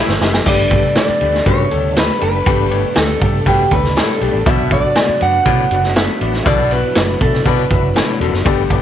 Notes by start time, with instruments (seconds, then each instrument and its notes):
Already playing: baritone saxophone A2, grand piano E3 B3 G4 E5, tonewheel organ E3 G3 B3 E4
0.00 clean electric guitar E4 E5
0.08 fingered electric bass G1, snare
0.20 fingered electric bass F#1, baritone saxophone G2, grand piano B3 G4 E5, snare
0.34 snare
0.45 fingered electric bass G1, grand piano G2 A3 D4 G4 B4, baritone saxophone G2, tonewheel organ G3 A3 B3 D4, clean electric guitar D5, kick, crash
0.71 grand piano A3 D4 G4 B4, kick, ride
0.95 grand piano A3 D4 G4 B4, clean electric guitar D5, snare, ride
1.09 muted fingered electric bass stroke
1.21 fingered electric bass D2, grand piano A3 D4 G4 B4, ride
1.34 snare
1.46 baritone saxophone F#2, fingered electric bass G2, grand piano A3 D4 G4 B4, clean electric guitar C#5, kick, ride
1.70 fingered electric bass D2, grand piano A3 D4 G4 A4, ride
1.96 grand piano A3 D4 G4 B4, clean electric guitar B4, snare, ride
2.20 fingered electric bass F#1, grand piano A3 D4 G4 B4, clean electric guitar B4, ride
2.46 fingered electric bass G1, baritone saxophone G2, grand piano G2 A3 D4 G4 B4, kick, ride
2.70 grand piano A3 D4 G4 C#5, ride
2.95 fingered electric bass D2, grand piano A3 D4 G4 B4, clean electric guitar A4, snare, ride
3.21 fingered electric bass G2, grand piano A3 D4 G4 A4, kick, ride
3.46 fingered electric bass G2, baritone saxophone B2, grand piano A3 D4 G4 B4, clean electric guitar G4, kick, ride
3.71 fingered electric bass D2, grand piano A3 D4 G4 A4, clean electric guitar B4, kick, ride
3.85 snare
3.96 baritone saxophone A2, grand piano A3 D4 G4 B4, clean electric guitar A4, snare, ride
4.21 fingered electric bass B1, baritone saxophone G2, grand piano A3 D4 G4 B4, open hi-hat, ride
4.34 fingered electric bass A1
4.46 fingered electric bass B1, baritone saxophone B2, grand piano B2 B3 D4 F#4 D5, tonewheel organ F#3 D4 F#4, clean electric guitar E5, kick, hi-hat pedal, ride
4.70 grand piano B3 D4 F#4 A4, clean electric guitar D5, kick, ride
4.95 grand piano B3 D4 F#4 D5, snare, ride
5.09 muted fingered electric bass stroke
5.21 fingered electric bass F#2, grand piano B3 D4 F#4 D5, clean electric guitar F#5, ride
5.46 baritone saxophone A2, fingered electric bass B2, grand piano B3 D4 F#4 D5, kick, ride
5.71 fingered electric bass F#1, grand piano B3 D4 F#4 D5, ride
5.83 snare
5.96 grand piano B3 D4 F#4 A4, clean electric guitar E5, snare, ride
6.21 fingered electric bass A1, grand piano B3 D4 F#4 D5, ride
6.33 snare
6.45 fingered electric bass B1, baritone saxophone B2, grand piano B2 B3 D4 F#4 A4, tonewheel organ E4, clean electric guitar D5, kick, ride
6.71 grand piano B3 D4 F#4 D5, clean electric guitar B4, ride
6.95 fingered electric bass F#1, grand piano B3 D4 F#4 D5, snare, ride
7.20 fingered electric bass B2, grand piano B3 D4 F#4 E5, clean electric guitar A4, kick, ride
7.33 snare
7.46 fingered electric bass B2, baritone saxophone B2, grand piano B3 D4 F#4 D5, clean electric guitar B4, kick, ride
7.70 fingered electric bass F#1, grand piano B3 D4 F#4 E5, kick, ride
7.95 baritone saxophone A2, grand piano B3 D4 F#4 D5, snare, ride
8.20 fingered electric bass E1, baritone saxophone F#2, grand piano B3 D4 F#4 A4, ride
8.33 fingered electric bass F#1, snare
8.45 fingered electric bass G1, baritone saxophone G2, grand piano G2 B3 G4 A4 D5, tonewheel organ A3 B3 G4, kick, ride
8.70 grand piano B3 G4 A4 D5, kick, ride